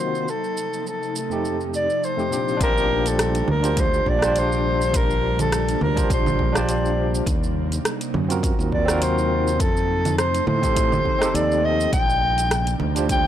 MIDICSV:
0, 0, Header, 1, 6, 480
1, 0, Start_track
1, 0, Key_signature, -2, "major"
1, 0, Tempo, 582524
1, 229, Time_signature, 4, 2, 24, 8
1, 10936, End_track
2, 0, Start_track
2, 0, Title_t, "Soprano saxophone"
2, 0, Program_c, 0, 64
2, 0, Note_on_c, 0, 72, 80
2, 249, Note_on_c, 0, 69, 93
2, 261, Note_off_c, 0, 72, 0
2, 719, Note_off_c, 0, 69, 0
2, 729, Note_on_c, 0, 69, 76
2, 943, Note_off_c, 0, 69, 0
2, 966, Note_on_c, 0, 69, 72
2, 1318, Note_off_c, 0, 69, 0
2, 1450, Note_on_c, 0, 74, 100
2, 1685, Note_on_c, 0, 72, 88
2, 1698, Note_off_c, 0, 74, 0
2, 2157, Note_off_c, 0, 72, 0
2, 2169, Note_on_c, 0, 70, 116
2, 2539, Note_on_c, 0, 69, 99
2, 2551, Note_off_c, 0, 70, 0
2, 2878, Note_off_c, 0, 69, 0
2, 2892, Note_on_c, 0, 70, 94
2, 3133, Note_on_c, 0, 72, 101
2, 3145, Note_off_c, 0, 70, 0
2, 3368, Note_on_c, 0, 74, 99
2, 3380, Note_off_c, 0, 72, 0
2, 3613, Note_on_c, 0, 72, 102
2, 3626, Note_off_c, 0, 74, 0
2, 4092, Note_on_c, 0, 70, 103
2, 4105, Note_off_c, 0, 72, 0
2, 4451, Note_off_c, 0, 70, 0
2, 4458, Note_on_c, 0, 69, 93
2, 4774, Note_off_c, 0, 69, 0
2, 4806, Note_on_c, 0, 70, 88
2, 5021, Note_off_c, 0, 70, 0
2, 5051, Note_on_c, 0, 72, 101
2, 5415, Note_on_c, 0, 74, 90
2, 5427, Note_off_c, 0, 72, 0
2, 5514, Note_off_c, 0, 74, 0
2, 5519, Note_on_c, 0, 74, 85
2, 5859, Note_off_c, 0, 74, 0
2, 7200, Note_on_c, 0, 74, 93
2, 7438, Note_on_c, 0, 72, 88
2, 7451, Note_off_c, 0, 74, 0
2, 7919, Note_on_c, 0, 69, 104
2, 7932, Note_off_c, 0, 72, 0
2, 8386, Note_off_c, 0, 69, 0
2, 8390, Note_on_c, 0, 72, 96
2, 8613, Note_off_c, 0, 72, 0
2, 8634, Note_on_c, 0, 72, 105
2, 9353, Note_on_c, 0, 74, 99
2, 9365, Note_off_c, 0, 72, 0
2, 9598, Note_on_c, 0, 75, 108
2, 9610, Note_off_c, 0, 74, 0
2, 9830, Note_off_c, 0, 75, 0
2, 9835, Note_on_c, 0, 79, 114
2, 10538, Note_off_c, 0, 79, 0
2, 10807, Note_on_c, 0, 79, 111
2, 10936, Note_off_c, 0, 79, 0
2, 10936, End_track
3, 0, Start_track
3, 0, Title_t, "Tine electric piano"
3, 0, Program_c, 1, 4
3, 0, Note_on_c, 1, 51, 85
3, 0, Note_on_c, 1, 58, 76
3, 0, Note_on_c, 1, 60, 75
3, 0, Note_on_c, 1, 65, 77
3, 0, Note_on_c, 1, 66, 90
3, 202, Note_off_c, 1, 51, 0
3, 208, Note_off_c, 1, 58, 0
3, 214, Note_off_c, 1, 60, 0
3, 222, Note_off_c, 1, 65, 0
3, 229, Note_off_c, 1, 66, 0
3, 1066, Note_on_c, 1, 41, 70
3, 1076, Note_on_c, 1, 57, 61
3, 1082, Note_on_c, 1, 60, 68
3, 1088, Note_on_c, 1, 63, 69
3, 1094, Note_on_c, 1, 67, 80
3, 1522, Note_off_c, 1, 41, 0
3, 1526, Note_off_c, 1, 57, 0
3, 1529, Note_off_c, 1, 60, 0
3, 1532, Note_off_c, 1, 63, 0
3, 1535, Note_off_c, 1, 67, 0
3, 1785, Note_on_c, 1, 41, 74
3, 1789, Note_on_c, 1, 57, 67
3, 1797, Note_on_c, 1, 60, 69
3, 1803, Note_on_c, 1, 63, 63
3, 1812, Note_on_c, 1, 67, 77
3, 1875, Note_off_c, 1, 41, 0
3, 1877, Note_off_c, 1, 57, 0
3, 1881, Note_off_c, 1, 60, 0
3, 1885, Note_off_c, 1, 63, 0
3, 1889, Note_off_c, 1, 67, 0
3, 1894, Note_on_c, 1, 46, 69
3, 1901, Note_on_c, 1, 60, 63
3, 1908, Note_on_c, 1, 62, 61
3, 1916, Note_on_c, 1, 65, 61
3, 1920, Note_on_c, 1, 67, 75
3, 2108, Note_off_c, 1, 62, 0
3, 2118, Note_on_c, 1, 62, 98
3, 2124, Note_off_c, 1, 65, 0
3, 2134, Note_on_c, 1, 65, 86
3, 2144, Note_off_c, 1, 67, 0
3, 2153, Note_on_c, 1, 67, 96
3, 2172, Note_on_c, 1, 72, 113
3, 2381, Note_off_c, 1, 46, 0
3, 2385, Note_off_c, 1, 60, 0
3, 2853, Note_off_c, 1, 62, 0
3, 2862, Note_off_c, 1, 65, 0
3, 2871, Note_off_c, 1, 67, 0
3, 2880, Note_off_c, 1, 72, 0
3, 2984, Note_on_c, 1, 62, 76
3, 2991, Note_on_c, 1, 65, 72
3, 3001, Note_on_c, 1, 67, 73
3, 3010, Note_on_c, 1, 72, 91
3, 3441, Note_off_c, 1, 62, 0
3, 3444, Note_off_c, 1, 65, 0
3, 3449, Note_off_c, 1, 67, 0
3, 3450, Note_on_c, 1, 62, 98
3, 3453, Note_off_c, 1, 72, 0
3, 3466, Note_on_c, 1, 65, 84
3, 3485, Note_on_c, 1, 67, 88
3, 3504, Note_on_c, 1, 72, 106
3, 4873, Note_off_c, 1, 62, 0
3, 4882, Note_off_c, 1, 65, 0
3, 4891, Note_off_c, 1, 67, 0
3, 4900, Note_off_c, 1, 72, 0
3, 4908, Note_on_c, 1, 62, 85
3, 4915, Note_on_c, 1, 65, 71
3, 4926, Note_on_c, 1, 67, 70
3, 4933, Note_on_c, 1, 72, 90
3, 5362, Note_off_c, 1, 62, 0
3, 5366, Note_off_c, 1, 65, 0
3, 5371, Note_off_c, 1, 67, 0
3, 5375, Note_off_c, 1, 72, 0
3, 5377, Note_on_c, 1, 62, 96
3, 5394, Note_on_c, 1, 65, 82
3, 5412, Note_on_c, 1, 67, 84
3, 5430, Note_on_c, 1, 72, 109
3, 5964, Note_off_c, 1, 62, 0
3, 5973, Note_off_c, 1, 65, 0
3, 5982, Note_off_c, 1, 67, 0
3, 5991, Note_off_c, 1, 72, 0
3, 6826, Note_on_c, 1, 60, 81
3, 6833, Note_on_c, 1, 65, 76
3, 6842, Note_on_c, 1, 66, 73
3, 6853, Note_on_c, 1, 70, 92
3, 7281, Note_off_c, 1, 60, 0
3, 7285, Note_off_c, 1, 65, 0
3, 7289, Note_off_c, 1, 66, 0
3, 7293, Note_on_c, 1, 60, 90
3, 7295, Note_off_c, 1, 70, 0
3, 7310, Note_on_c, 1, 65, 85
3, 7327, Note_on_c, 1, 66, 84
3, 7346, Note_on_c, 1, 70, 108
3, 7883, Note_off_c, 1, 60, 0
3, 7891, Note_off_c, 1, 65, 0
3, 7900, Note_off_c, 1, 66, 0
3, 7909, Note_off_c, 1, 70, 0
3, 8748, Note_on_c, 1, 60, 80
3, 8758, Note_on_c, 1, 63, 76
3, 8766, Note_on_c, 1, 67, 75
3, 8776, Note_on_c, 1, 69, 91
3, 9202, Note_off_c, 1, 60, 0
3, 9207, Note_off_c, 1, 63, 0
3, 9211, Note_off_c, 1, 67, 0
3, 9216, Note_on_c, 1, 60, 96
3, 9217, Note_off_c, 1, 69, 0
3, 9233, Note_on_c, 1, 63, 87
3, 9253, Note_on_c, 1, 67, 91
3, 9269, Note_on_c, 1, 69, 99
3, 9804, Note_off_c, 1, 60, 0
3, 9813, Note_off_c, 1, 63, 0
3, 9823, Note_off_c, 1, 67, 0
3, 9831, Note_off_c, 1, 69, 0
3, 10670, Note_on_c, 1, 62, 80
3, 10679, Note_on_c, 1, 65, 74
3, 10686, Note_on_c, 1, 67, 77
3, 10697, Note_on_c, 1, 72, 83
3, 10936, Note_off_c, 1, 62, 0
3, 10936, Note_off_c, 1, 65, 0
3, 10936, Note_off_c, 1, 67, 0
3, 10936, Note_off_c, 1, 72, 0
3, 10936, End_track
4, 0, Start_track
4, 0, Title_t, "Ambient pad"
4, 0, Program_c, 2, 92
4, 0, Note_on_c, 2, 48, 77
4, 0, Note_on_c, 2, 54, 74
4, 0, Note_on_c, 2, 58, 72
4, 0, Note_on_c, 2, 63, 87
4, 197, Note_off_c, 2, 58, 0
4, 200, Note_off_c, 2, 48, 0
4, 213, Note_off_c, 2, 54, 0
4, 225, Note_on_c, 2, 48, 83
4, 225, Note_on_c, 2, 53, 69
4, 228, Note_on_c, 2, 57, 76
4, 2118, Note_off_c, 2, 63, 0
4, 2128, Note_off_c, 2, 48, 0
4, 2128, Note_off_c, 2, 53, 0
4, 2129, Note_off_c, 2, 57, 0
4, 2145, Note_on_c, 2, 48, 92
4, 2147, Note_on_c, 2, 55, 80
4, 2150, Note_on_c, 2, 62, 94
4, 2151, Note_on_c, 2, 58, 74
4, 5955, Note_off_c, 2, 55, 0
4, 5956, Note_off_c, 2, 62, 0
4, 5989, Note_on_c, 2, 63, 91
4, 5996, Note_on_c, 2, 54, 78
4, 7877, Note_off_c, 2, 58, 0
4, 7893, Note_off_c, 2, 54, 0
4, 7918, Note_on_c, 2, 57, 82
4, 7920, Note_on_c, 2, 53, 80
4, 9794, Note_off_c, 2, 48, 0
4, 9796, Note_off_c, 2, 63, 0
4, 9814, Note_off_c, 2, 57, 0
4, 9815, Note_off_c, 2, 53, 0
4, 9833, Note_on_c, 2, 55, 77
4, 9834, Note_on_c, 2, 48, 89
4, 9834, Note_on_c, 2, 62, 97
4, 9835, Note_on_c, 2, 58, 80
4, 10936, Note_off_c, 2, 48, 0
4, 10936, Note_off_c, 2, 55, 0
4, 10936, Note_off_c, 2, 58, 0
4, 10936, Note_off_c, 2, 62, 0
4, 10936, End_track
5, 0, Start_track
5, 0, Title_t, "Fingered electric bass"
5, 0, Program_c, 3, 33
5, 2148, Note_on_c, 3, 34, 104
5, 2809, Note_off_c, 3, 34, 0
5, 2867, Note_on_c, 3, 38, 77
5, 3289, Note_off_c, 3, 38, 0
5, 3347, Note_on_c, 3, 34, 77
5, 4729, Note_off_c, 3, 34, 0
5, 4788, Note_on_c, 3, 38, 81
5, 4955, Note_off_c, 3, 38, 0
5, 5027, Note_on_c, 3, 34, 80
5, 5929, Note_off_c, 3, 34, 0
5, 5985, Note_on_c, 3, 39, 91
5, 6408, Note_off_c, 3, 39, 0
5, 6708, Note_on_c, 3, 42, 78
5, 7008, Note_off_c, 3, 42, 0
5, 7076, Note_on_c, 3, 39, 93
5, 7909, Note_off_c, 3, 39, 0
5, 7909, Note_on_c, 3, 41, 109
5, 8570, Note_off_c, 3, 41, 0
5, 8627, Note_on_c, 3, 45, 81
5, 9049, Note_off_c, 3, 45, 0
5, 9347, Note_on_c, 3, 39, 86
5, 9769, Note_off_c, 3, 39, 0
5, 9828, Note_on_c, 3, 34, 104
5, 10489, Note_off_c, 3, 34, 0
5, 10551, Note_on_c, 3, 38, 80
5, 10936, Note_off_c, 3, 38, 0
5, 10936, End_track
6, 0, Start_track
6, 0, Title_t, "Drums"
6, 123, Note_on_c, 9, 82, 25
6, 206, Note_off_c, 9, 82, 0
6, 231, Note_on_c, 9, 82, 38
6, 314, Note_off_c, 9, 82, 0
6, 363, Note_on_c, 9, 82, 20
6, 445, Note_off_c, 9, 82, 0
6, 471, Note_on_c, 9, 82, 67
6, 553, Note_off_c, 9, 82, 0
6, 605, Note_on_c, 9, 82, 30
6, 687, Note_off_c, 9, 82, 0
6, 715, Note_on_c, 9, 82, 37
6, 797, Note_off_c, 9, 82, 0
6, 847, Note_on_c, 9, 82, 20
6, 930, Note_off_c, 9, 82, 0
6, 953, Note_on_c, 9, 82, 66
6, 1035, Note_off_c, 9, 82, 0
6, 1082, Note_on_c, 9, 82, 28
6, 1165, Note_off_c, 9, 82, 0
6, 1194, Note_on_c, 9, 82, 37
6, 1277, Note_off_c, 9, 82, 0
6, 1324, Note_on_c, 9, 82, 20
6, 1406, Note_off_c, 9, 82, 0
6, 1433, Note_on_c, 9, 82, 65
6, 1515, Note_off_c, 9, 82, 0
6, 1565, Note_on_c, 9, 82, 29
6, 1647, Note_off_c, 9, 82, 0
6, 1677, Note_on_c, 9, 82, 38
6, 1759, Note_off_c, 9, 82, 0
6, 1806, Note_on_c, 9, 82, 19
6, 1888, Note_off_c, 9, 82, 0
6, 1916, Note_on_c, 9, 82, 67
6, 1998, Note_off_c, 9, 82, 0
6, 2048, Note_on_c, 9, 82, 28
6, 2130, Note_off_c, 9, 82, 0
6, 2147, Note_on_c, 9, 36, 121
6, 2148, Note_on_c, 9, 42, 71
6, 2155, Note_on_c, 9, 82, 59
6, 2229, Note_off_c, 9, 36, 0
6, 2231, Note_off_c, 9, 42, 0
6, 2238, Note_off_c, 9, 82, 0
6, 2288, Note_on_c, 9, 82, 35
6, 2370, Note_off_c, 9, 82, 0
6, 2519, Note_on_c, 9, 42, 35
6, 2526, Note_on_c, 9, 82, 69
6, 2602, Note_off_c, 9, 42, 0
6, 2608, Note_off_c, 9, 82, 0
6, 2629, Note_on_c, 9, 37, 83
6, 2629, Note_on_c, 9, 42, 72
6, 2636, Note_on_c, 9, 82, 58
6, 2711, Note_off_c, 9, 37, 0
6, 2711, Note_off_c, 9, 42, 0
6, 2718, Note_off_c, 9, 82, 0
6, 2759, Note_on_c, 9, 42, 46
6, 2766, Note_on_c, 9, 82, 34
6, 2842, Note_off_c, 9, 42, 0
6, 2849, Note_off_c, 9, 82, 0
6, 2865, Note_on_c, 9, 64, 84
6, 2948, Note_off_c, 9, 64, 0
6, 2998, Note_on_c, 9, 42, 44
6, 3004, Note_on_c, 9, 82, 64
6, 3080, Note_off_c, 9, 42, 0
6, 3087, Note_off_c, 9, 82, 0
6, 3106, Note_on_c, 9, 42, 72
6, 3107, Note_on_c, 9, 36, 120
6, 3113, Note_on_c, 9, 82, 52
6, 3188, Note_off_c, 9, 42, 0
6, 3189, Note_off_c, 9, 36, 0
6, 3195, Note_off_c, 9, 82, 0
6, 3245, Note_on_c, 9, 82, 33
6, 3327, Note_off_c, 9, 82, 0
6, 3347, Note_on_c, 9, 36, 64
6, 3430, Note_off_c, 9, 36, 0
6, 3480, Note_on_c, 9, 37, 80
6, 3480, Note_on_c, 9, 42, 35
6, 3487, Note_on_c, 9, 82, 71
6, 3563, Note_off_c, 9, 37, 0
6, 3563, Note_off_c, 9, 42, 0
6, 3570, Note_off_c, 9, 82, 0
6, 3589, Note_on_c, 9, 42, 72
6, 3596, Note_on_c, 9, 82, 55
6, 3672, Note_off_c, 9, 42, 0
6, 3679, Note_off_c, 9, 82, 0
6, 3727, Note_on_c, 9, 82, 34
6, 3810, Note_off_c, 9, 82, 0
6, 3967, Note_on_c, 9, 82, 64
6, 4049, Note_off_c, 9, 82, 0
6, 4068, Note_on_c, 9, 36, 127
6, 4071, Note_on_c, 9, 42, 72
6, 4078, Note_on_c, 9, 82, 61
6, 4150, Note_off_c, 9, 36, 0
6, 4153, Note_off_c, 9, 42, 0
6, 4160, Note_off_c, 9, 82, 0
6, 4206, Note_on_c, 9, 82, 36
6, 4289, Note_off_c, 9, 82, 0
6, 4442, Note_on_c, 9, 42, 32
6, 4442, Note_on_c, 9, 64, 62
6, 4449, Note_on_c, 9, 82, 75
6, 4525, Note_off_c, 9, 42, 0
6, 4525, Note_off_c, 9, 64, 0
6, 4531, Note_off_c, 9, 82, 0
6, 4552, Note_on_c, 9, 37, 80
6, 4552, Note_on_c, 9, 42, 67
6, 4559, Note_on_c, 9, 82, 58
6, 4634, Note_off_c, 9, 37, 0
6, 4634, Note_off_c, 9, 42, 0
6, 4641, Note_off_c, 9, 82, 0
6, 4685, Note_on_c, 9, 42, 45
6, 4691, Note_on_c, 9, 82, 35
6, 4767, Note_off_c, 9, 42, 0
6, 4774, Note_off_c, 9, 82, 0
6, 4790, Note_on_c, 9, 64, 77
6, 4872, Note_off_c, 9, 64, 0
6, 4918, Note_on_c, 9, 36, 100
6, 4921, Note_on_c, 9, 42, 44
6, 4928, Note_on_c, 9, 82, 64
6, 5000, Note_off_c, 9, 36, 0
6, 5004, Note_off_c, 9, 42, 0
6, 5010, Note_off_c, 9, 82, 0
6, 5027, Note_on_c, 9, 36, 127
6, 5030, Note_on_c, 9, 42, 65
6, 5037, Note_on_c, 9, 82, 55
6, 5109, Note_off_c, 9, 36, 0
6, 5112, Note_off_c, 9, 42, 0
6, 5119, Note_off_c, 9, 82, 0
6, 5162, Note_on_c, 9, 64, 76
6, 5169, Note_on_c, 9, 82, 37
6, 5244, Note_off_c, 9, 64, 0
6, 5251, Note_off_c, 9, 82, 0
6, 5266, Note_on_c, 9, 36, 64
6, 5349, Note_off_c, 9, 36, 0
6, 5401, Note_on_c, 9, 37, 84
6, 5401, Note_on_c, 9, 42, 30
6, 5408, Note_on_c, 9, 82, 71
6, 5483, Note_off_c, 9, 37, 0
6, 5483, Note_off_c, 9, 42, 0
6, 5490, Note_off_c, 9, 82, 0
6, 5509, Note_on_c, 9, 42, 68
6, 5516, Note_on_c, 9, 82, 56
6, 5592, Note_off_c, 9, 42, 0
6, 5598, Note_off_c, 9, 82, 0
6, 5648, Note_on_c, 9, 82, 34
6, 5730, Note_off_c, 9, 82, 0
6, 5889, Note_on_c, 9, 82, 67
6, 5971, Note_off_c, 9, 82, 0
6, 5986, Note_on_c, 9, 36, 127
6, 5990, Note_on_c, 9, 42, 65
6, 5997, Note_on_c, 9, 82, 60
6, 6069, Note_off_c, 9, 36, 0
6, 6072, Note_off_c, 9, 42, 0
6, 6079, Note_off_c, 9, 82, 0
6, 6127, Note_on_c, 9, 82, 39
6, 6210, Note_off_c, 9, 82, 0
6, 6361, Note_on_c, 9, 42, 32
6, 6368, Note_on_c, 9, 82, 77
6, 6443, Note_off_c, 9, 42, 0
6, 6450, Note_off_c, 9, 82, 0
6, 6470, Note_on_c, 9, 37, 82
6, 6470, Note_on_c, 9, 42, 68
6, 6477, Note_on_c, 9, 82, 59
6, 6553, Note_off_c, 9, 37, 0
6, 6553, Note_off_c, 9, 42, 0
6, 6560, Note_off_c, 9, 82, 0
6, 6600, Note_on_c, 9, 42, 45
6, 6607, Note_on_c, 9, 82, 37
6, 6683, Note_off_c, 9, 42, 0
6, 6690, Note_off_c, 9, 82, 0
6, 6708, Note_on_c, 9, 64, 78
6, 6791, Note_off_c, 9, 64, 0
6, 6840, Note_on_c, 9, 42, 43
6, 6847, Note_on_c, 9, 82, 70
6, 6923, Note_off_c, 9, 42, 0
6, 6929, Note_off_c, 9, 82, 0
6, 6947, Note_on_c, 9, 36, 121
6, 6952, Note_on_c, 9, 42, 66
6, 6959, Note_on_c, 9, 82, 57
6, 7030, Note_off_c, 9, 36, 0
6, 7034, Note_off_c, 9, 42, 0
6, 7041, Note_off_c, 9, 82, 0
6, 7088, Note_on_c, 9, 82, 36
6, 7171, Note_off_c, 9, 82, 0
6, 7188, Note_on_c, 9, 36, 69
6, 7270, Note_off_c, 9, 36, 0
6, 7319, Note_on_c, 9, 37, 82
6, 7319, Note_on_c, 9, 42, 29
6, 7326, Note_on_c, 9, 82, 75
6, 7402, Note_off_c, 9, 37, 0
6, 7402, Note_off_c, 9, 42, 0
6, 7409, Note_off_c, 9, 82, 0
6, 7430, Note_on_c, 9, 42, 68
6, 7437, Note_on_c, 9, 82, 60
6, 7512, Note_off_c, 9, 42, 0
6, 7519, Note_off_c, 9, 82, 0
6, 7567, Note_on_c, 9, 82, 37
6, 7650, Note_off_c, 9, 82, 0
6, 7807, Note_on_c, 9, 82, 67
6, 7889, Note_off_c, 9, 82, 0
6, 7908, Note_on_c, 9, 36, 127
6, 7912, Note_on_c, 9, 42, 68
6, 7918, Note_on_c, 9, 82, 60
6, 7991, Note_off_c, 9, 36, 0
6, 7994, Note_off_c, 9, 42, 0
6, 8001, Note_off_c, 9, 82, 0
6, 8049, Note_on_c, 9, 82, 37
6, 8131, Note_off_c, 9, 82, 0
6, 8283, Note_on_c, 9, 42, 33
6, 8283, Note_on_c, 9, 64, 62
6, 8290, Note_on_c, 9, 82, 70
6, 8366, Note_off_c, 9, 42, 0
6, 8366, Note_off_c, 9, 64, 0
6, 8373, Note_off_c, 9, 82, 0
6, 8392, Note_on_c, 9, 37, 80
6, 8392, Note_on_c, 9, 42, 61
6, 8399, Note_on_c, 9, 82, 62
6, 8475, Note_off_c, 9, 37, 0
6, 8475, Note_off_c, 9, 42, 0
6, 8481, Note_off_c, 9, 82, 0
6, 8524, Note_on_c, 9, 42, 43
6, 8531, Note_on_c, 9, 82, 37
6, 8607, Note_off_c, 9, 42, 0
6, 8613, Note_off_c, 9, 82, 0
6, 8629, Note_on_c, 9, 64, 76
6, 8711, Note_off_c, 9, 64, 0
6, 8759, Note_on_c, 9, 36, 104
6, 8762, Note_on_c, 9, 42, 44
6, 8769, Note_on_c, 9, 82, 67
6, 8841, Note_off_c, 9, 36, 0
6, 8845, Note_off_c, 9, 42, 0
6, 8852, Note_off_c, 9, 82, 0
6, 8868, Note_on_c, 9, 36, 122
6, 8870, Note_on_c, 9, 42, 64
6, 8877, Note_on_c, 9, 82, 60
6, 8951, Note_off_c, 9, 36, 0
6, 8953, Note_off_c, 9, 42, 0
6, 8960, Note_off_c, 9, 82, 0
6, 9000, Note_on_c, 9, 64, 80
6, 9007, Note_on_c, 9, 82, 35
6, 9083, Note_off_c, 9, 64, 0
6, 9090, Note_off_c, 9, 82, 0
6, 9108, Note_on_c, 9, 36, 65
6, 9191, Note_off_c, 9, 36, 0
6, 9242, Note_on_c, 9, 37, 79
6, 9242, Note_on_c, 9, 42, 30
6, 9249, Note_on_c, 9, 82, 72
6, 9324, Note_off_c, 9, 37, 0
6, 9324, Note_off_c, 9, 42, 0
6, 9331, Note_off_c, 9, 82, 0
6, 9353, Note_on_c, 9, 42, 64
6, 9360, Note_on_c, 9, 82, 58
6, 9435, Note_off_c, 9, 42, 0
6, 9442, Note_off_c, 9, 82, 0
6, 9489, Note_on_c, 9, 82, 35
6, 9571, Note_off_c, 9, 82, 0
6, 9728, Note_on_c, 9, 82, 64
6, 9810, Note_off_c, 9, 82, 0
6, 9827, Note_on_c, 9, 36, 126
6, 9830, Note_on_c, 9, 42, 67
6, 9836, Note_on_c, 9, 82, 55
6, 9910, Note_off_c, 9, 36, 0
6, 9912, Note_off_c, 9, 42, 0
6, 9919, Note_off_c, 9, 82, 0
6, 9968, Note_on_c, 9, 82, 34
6, 10050, Note_off_c, 9, 82, 0
6, 10200, Note_on_c, 9, 42, 29
6, 10207, Note_on_c, 9, 82, 70
6, 10282, Note_off_c, 9, 42, 0
6, 10289, Note_off_c, 9, 82, 0
6, 10310, Note_on_c, 9, 37, 77
6, 10310, Note_on_c, 9, 42, 62
6, 10316, Note_on_c, 9, 82, 55
6, 10392, Note_off_c, 9, 37, 0
6, 10392, Note_off_c, 9, 42, 0
6, 10399, Note_off_c, 9, 82, 0
6, 10440, Note_on_c, 9, 42, 47
6, 10447, Note_on_c, 9, 82, 34
6, 10522, Note_off_c, 9, 42, 0
6, 10529, Note_off_c, 9, 82, 0
6, 10545, Note_on_c, 9, 64, 82
6, 10627, Note_off_c, 9, 64, 0
6, 10679, Note_on_c, 9, 42, 41
6, 10686, Note_on_c, 9, 82, 65
6, 10761, Note_off_c, 9, 42, 0
6, 10768, Note_off_c, 9, 82, 0
6, 10788, Note_on_c, 9, 36, 109
6, 10789, Note_on_c, 9, 42, 65
6, 10796, Note_on_c, 9, 82, 56
6, 10870, Note_off_c, 9, 36, 0
6, 10872, Note_off_c, 9, 42, 0
6, 10879, Note_off_c, 9, 82, 0
6, 10936, End_track
0, 0, End_of_file